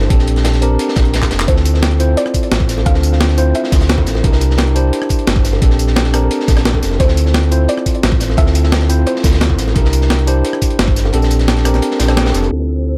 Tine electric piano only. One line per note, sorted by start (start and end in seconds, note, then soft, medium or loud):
0.00 0.10 D4 medium
0.00 0.12 E4 medium
0.00 0.11 G4 medium
0.00 0.12 A#4 medium
0.00 0.12 C5 loud
0.09 0.59 C4 medium
0.09 0.60 D4 medium
0.09 0.60 G4 medium
0.09 0.60 A4 medium
0.61 0.75 C4 medium
0.61 0.75 D4 medium
0.61 0.75 G4 medium
0.61 0.76 A#4 loud
1.47 1.97 C4 medium
1.47 1.98 E4 medium
1.47 1.98 F4 medium
1.47 1.98 A4 medium
1.99 2.13 C4 medium
1.99 2.13 E4 medium
1.99 2.13 F4 medium
1.99 2.13 C5 loud
2.85 3.35 C4 medium
2.85 3.36 D4 medium
2.85 3.36 F4 medium
2.85 3.36 A4 medium
3.37 3.51 C4 medium
3.37 3.51 E4 medium
3.37 3.51 F4 medium
3.37 3.51 C5 loud
4.23 4.73 D4 medium
4.23 4.74 E4 medium
4.23 4.74 G4 medium
4.23 4.74 A#4 medium
4.75 4.89 D4 medium
4.75 4.89 E4 medium
4.75 4.89 G4 medium
4.75 4.89 C5 loud
5.61 6.11 C4 medium
5.61 6.11 D4 medium
5.61 6.12 G4 medium
5.61 6.12 A4 medium
6.13 6.27 C4 medium
6.13 6.27 D4 medium
6.13 6.27 G4 medium
6.13 6.27 A#4 loud
6.99 7.49 C4 medium
6.99 7.49 E4 medium
6.99 7.50 F4 medium
6.99 7.50 A4 medium
7.51 7.65 C4 medium
7.51 7.65 E4 medium
7.51 7.65 F4 medium
7.51 7.65 C5 loud
8.37 8.87 C4 medium
8.37 8.87 E4 medium
8.37 8.88 F4 medium
8.37 8.88 A4 loud
8.89 9.03 C4 loud
8.89 9.03 E4 medium
8.89 9.03 F4 medium
8.89 9.03 C5 loud
9.75 10.25 D4 medium
9.75 10.25 E4 medium
9.75 10.26 G4 medium
9.75 10.26 A#4 medium
10.27 10.41 D4 medium
10.27 10.41 E4 medium
10.27 10.41 G4 medium
10.27 10.41 C5 loud
11.13 11.63 C4 medium
11.13 11.63 D4 medium
11.13 11.64 G4 medium
11.13 11.64 A4 loud
11.65 11.78 C4 medium
11.65 11.79 D4 medium
11.65 11.79 G4 medium
11.65 11.79 A#4 loud
12.07 12.49 C4 medium
12.07 12.49 D4 medium
12.07 12.50 G4 medium
12.07 12.50 A4 medium
12.51 12.98 C4 medium
12.51 12.98 E4 medium
12.51 12.98 F4 medium